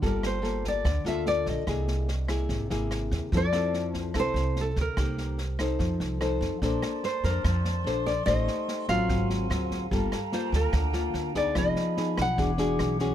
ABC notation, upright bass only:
X:1
M:4/4
L:1/16
Q:1/4=146
K:F
V:1 name="Upright bass" clef=bass
G,,,8 D,,2 D,,4 B,,, z | C,,8 ^G,,,2 G,,,4 ^D,, z | F,,8 C,,2 C,,4 D,, z | C,,8 F,,2 C,,4 F,, z |
[K:Bb] B,,,2 z4 F,,2 F,,4 B,,,4 | A,,,2 z4 A,,,2 _A,,,4 D,,4 | G,,,2 z4 D,,2 D,,4 D,,4 | F,,,2 z4 _C,,2 =E,,,4 =B,,,4 |]